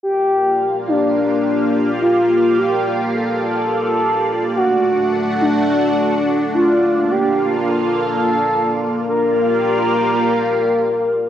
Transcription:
0.03 4.52 A#3 medium
0.03 4.52 F4 medium
0.03 4.52 G4 medium
0.03 0.77 G4 loud
0.03 9.05 D5 medium
0.03 4.52 F5 medium
0.88 1.90 D4 loud
2.01 2.59 F4 loud
2.58 3.01 G4 medium
3.14 4.45 A4 loud
4.56 6.80 A3 medium
4.56 9.05 D4 medium
4.56 5.29 F#4 loud
4.56 6.80 F#4 medium
4.56 6.80 F#5 medium
5.41 6.43 D4 loud
6.54 7.12 F4 loud
6.82 9.06 A#3 medium
6.82 9.06 F4 medium
6.82 9.06 F5 medium
7.11 7.53 G4 medium
7.67 8.97 A4 loud
9.09 11.29 A#3 medium
9.09 11.29 F4 medium
9.09 11.29 G4 medium
9.09 11.29 A#4 loud
9.09 11.29 D5 medium
9.09 11.29 F5 medium

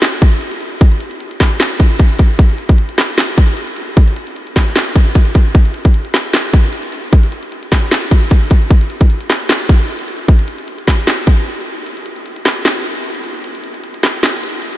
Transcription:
0.02 snare loud
0.02 clap medium
0.02 closed hi-hat medium
0.12 closed hi-hat medium
0.22 kick loud
0.22 closed hi-hat medium
0.32 closed hi-hat medium
0.41 closed hi-hat medium
0.51 closed hi-hat medium
0.61 closed hi-hat medium
0.81 kick loud
0.81 closed hi-hat medium
0.92 closed hi-hat medium
1.01 closed hi-hat medium
1.11 closed hi-hat medium
1.20 closed hi-hat medium
1.31 closed hi-hat medium
1.40 kick medium
1.40 snare medium
1.40 clap medium
1.40 closed hi-hat medium
1.40 open hi-hat medium
1.51 closed hi-hat medium
1.60 snare loud
1.60 clap medium
1.60 closed hi-hat medium
1.70 closed hi-hat medium
1.80 kick loud
1.80 closed hi-hat medium
1.90 closed hi-hat medium
1.99 kick loud
1.99 closed hi-hat medium
2.09 closed hi-hat medium
2.19 kick medium
2.19 closed hi-hat medium
2.39 kick loud
2.39 closed hi-hat medium
2.50 closed hi-hat medium
2.58 closed hi-hat medium
2.69 kick loud
2.69 closed hi-hat medium
2.78 closed hi-hat medium
2.89 closed hi-hat medium
2.98 snare loud
2.98 clap medium
2.98 closed hi-hat medium
3.09 closed hi-hat medium
3.18 snare loud
3.18 clap medium
3.18 closed hi-hat medium
3.28 closed hi-hat medium
3.38 kick loud
3.38 closed hi-hat medium
3.48 closed hi-hat medium
3.57 closed hi-hat medium
3.67 closed hi-hat medium
3.77 closed hi-hat medium
3.97 kick loud
3.97 closed hi-hat medium
4.08 closed hi-hat medium
4.16 closed hi-hat medium
4.27 closed hi-hat medium
4.36 closed hi-hat medium
4.47 closed hi-hat medium
4.56 kick loud
4.56 snare medium
4.56 clap medium
4.56 closed hi-hat medium
4.56 open hi-hat medium
4.63 closed hi-hat medium
4.69 closed hi-hat medium
4.76 snare loud
4.76 clap medium
4.76 closed hi-hat medium
4.86 closed hi-hat medium
4.96 kick loud
4.96 closed hi-hat medium
5.06 closed hi-hat medium
5.15 kick medium
5.15 closed hi-hat medium
5.25 closed hi-hat medium
5.34 kick medium
5.34 closed hi-hat medium
5.55 kick loud
5.55 closed hi-hat medium
5.66 closed hi-hat medium
5.74 closed hi-hat medium
5.85 kick medium
5.85 closed hi-hat medium
5.94 closed hi-hat medium
6.05 closed hi-hat medium
6.14 snare medium
6.14 clap medium
6.14 closed hi-hat medium
6.24 closed hi-hat medium
6.34 snare loud
6.34 clap medium
6.34 closed hi-hat medium
6.44 closed hi-hat medium
6.54 kick loud
6.54 closed hi-hat medium
6.64 closed hi-hat medium
6.73 closed hi-hat medium
6.83 closed hi-hat medium
6.92 closed hi-hat medium
7.13 kick loud
7.13 closed hi-hat medium
7.23 closed hi-hat medium
7.32 closed hi-hat medium
7.43 closed hi-hat medium
7.52 closed hi-hat medium
7.63 closed hi-hat medium
7.72 kick loud
7.72 snare medium
7.72 clap medium
7.72 closed hi-hat medium
7.72 open hi-hat medium
7.82 closed hi-hat medium
7.92 snare loud
7.92 clap medium
7.92 closed hi-hat medium
8.02 closed hi-hat medium
8.11 kick loud
8.11 closed hi-hat medium
8.21 closed hi-hat medium
8.31 kick medium
8.31 closed hi-hat medium
8.41 closed hi-hat medium
8.50 kick loud
8.50 closed hi-hat medium
8.71 kick loud
8.71 closed hi-hat medium
8.81 closed hi-hat medium
8.90 closed hi-hat medium
9.01 kick medium
9.01 closed hi-hat medium
9.10 closed hi-hat medium
9.21 closed hi-hat medium
9.30 snare medium
9.30 clap medium
9.30 closed hi-hat medium
9.40 closed hi-hat medium
9.49 snare loud
9.49 clap medium
9.49 closed hi-hat medium
9.60 closed hi-hat medium
9.69 kick loud
9.69 closed hi-hat medium
9.79 closed hi-hat medium
9.88 closed hi-hat medium
9.99 closed hi-hat medium
10.08 closed hi-hat medium
10.28 kick loud
10.28 closed hi-hat medium
10.39 closed hi-hat medium
10.48 closed hi-hat medium
10.59 closed hi-hat medium
10.68 closed hi-hat medium
10.79 closed hi-hat medium
10.87 kick medium
10.87 snare medium
10.87 clap medium
10.87 closed hi-hat medium
10.87 open hi-hat medium
10.94 closed hi-hat medium
11.01 closed hi-hat medium
11.07 snare loud
11.07 clap medium
11.07 closed hi-hat medium
11.18 closed hi-hat medium
11.27 kick loud
11.27 closed hi-hat medium
11.37 closed hi-hat medium
11.86 closed hi-hat medium
11.97 closed hi-hat medium
12.06 closed hi-hat medium
12.16 closed hi-hat medium
12.26 closed hi-hat medium
12.36 closed hi-hat medium
12.46 snare medium
12.46 clap medium
12.46 closed hi-hat medium
12.56 closed hi-hat medium
12.65 snare loud
12.65 clap medium
12.65 closed hi-hat medium
12.76 closed hi-hat medium
12.86 closed hi-hat medium
12.95 closed hi-hat medium
13.04 closed hi-hat medium
13.15 closed hi-hat medium
13.24 closed hi-hat medium
13.44 closed hi-hat medium
13.55 closed hi-hat medium
13.64 closed hi-hat medium
13.74 closed hi-hat medium
13.84 closed hi-hat medium
13.94 closed hi-hat medium
14.03 snare medium
14.03 clap medium
14.03 closed hi-hat medium
14.03 open hi-hat medium
14.14 closed hi-hat medium
14.23 snare loud
14.23 clap medium
14.23 closed hi-hat medium
14.34 closed hi-hat medium
14.44 closed hi-hat medium
14.53 closed hi-hat medium
14.62 closed hi-hat medium
14.73 closed hi-hat medium

